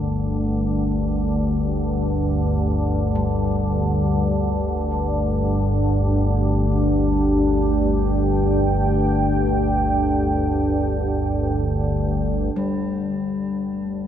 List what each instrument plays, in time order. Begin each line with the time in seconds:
Already playing: synth drone G1 D2, singing bowl A#4
3.14 bronze metallophone G3, ambient pad D4
3.78 ambient pad G4
6.63 ambient pad G5
12.55 synth drone G1 D2, bronze metallophone G3, singing bowl G4